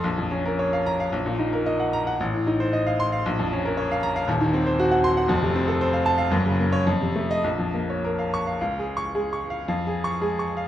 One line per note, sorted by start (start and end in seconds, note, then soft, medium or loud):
0.04 1.10 A#1 medium
0.18 0.40 F2 medium
0.31 0.54 C#4 medium
0.46 0.68 A#4 medium
0.59 0.81 C#5 medium
0.73 0.94 F5 medium
0.87 1.08 A#5 loud
1.00 1.13 F5 medium
1.12 2.16 A#1 medium
1.26 1.48 A#2 medium
1.39 1.61 D#4 medium
1.53 1.74 A#4 medium
1.66 1.87 D#5 medium
1.80 2.01 F#5 medium
1.93 2.14 A#5 loud
2.07 2.20 F#5 medium
2.20 3.23 A1 medium
2.34 2.55 A2 medium
2.47 2.68 D#4 medium
2.60 2.81 C5 medium
2.73 2.94 D#5 medium
2.87 3.08 F5 medium
3.00 3.21 C6 loud
3.12 3.26 F5 medium
3.26 4.25 A#1 medium
3.39 3.60 F2 medium
3.53 3.73 C#4 medium
3.65 3.86 A#4 medium
3.77 3.98 C#5 medium
3.92 4.11 F5 medium
4.03 4.23 A#5 loud
4.16 4.28 F5 medium
4.28 5.26 D#1 medium
4.28 5.26 D#2 medium
4.41 4.61 D#3 medium
4.54 4.74 C4 medium
4.66 4.86 C5 medium
4.79 4.99 F#4 medium
4.91 5.12 F#5 medium
5.04 5.24 C6 loud
5.17 5.29 F#5 medium
5.28 6.28 F1 medium
5.28 6.29 F2 loud
5.43 5.63 C3 medium
5.56 5.76 C4 medium
5.68 5.88 A4 medium
5.81 6.01 C5 medium
5.93 6.14 F5 medium
6.06 6.27 A5 loud
6.18 6.31 F5 medium
6.31 6.84 F#1 medium
6.31 6.85 F#2 medium
6.45 6.67 C#3 medium
6.59 6.81 A#3 medium
6.73 6.86 C#5 medium
6.87 7.43 F2 medium
7.01 7.24 C3 medium
7.16 7.38 A3 medium
7.31 7.45 D#5 medium
7.44 8.56 A#1 medium
7.59 7.82 F2 medium
7.74 7.97 A#3 medium
7.90 8.12 C#5 medium
8.05 8.27 A#4 medium
8.19 8.41 F5 medium
8.34 8.55 C#6 medium
8.47 8.60 F5 medium
8.61 9.65 C#2 medium
8.61 8.89 F5 medium
8.79 9.07 G#4 medium
8.97 9.25 C#6 medium
9.15 9.36 G#3 medium
9.15 9.43 G#4 medium
9.33 9.61 C#6 medium
9.50 9.67 F5 medium
9.68 10.68 F2 medium
9.68 9.96 F5 medium
9.87 10.15 G#4 medium
10.04 10.32 C#6 medium
10.21 10.42 G#3 medium
10.21 10.50 G#4 medium
10.39 10.68 C#6 medium
10.57 10.68 F5 medium